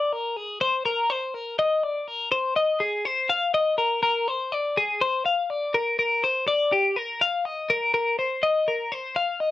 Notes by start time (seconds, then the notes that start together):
Already playing: D5
0.13 A#4
0.37 G#4
0.61 C5
0.85 A#4
1.10 C5
1.34 A#4
1.59 D#5
1.83 D5
2.08 A#4
2.32 C5
2.56 D#5
2.80 G#4
3.05 C5
3.30 F5
3.54 D#5
3.78 A#4
4.03 A#4
4.28 C5
4.52 D5
4.77 G#4
5.01 C5
5.26 F5
5.50 D5
5.74 A#4
5.99 A#4
6.24 C5
6.48 D5
6.72 G4
6.96 A#4
7.21 F5
7.45 D#5
7.70 A#4
7.94 A#4
8.19 C5
8.43 D#5
8.68 A#4
8.92 C5
9.16 F5
9.40 D#5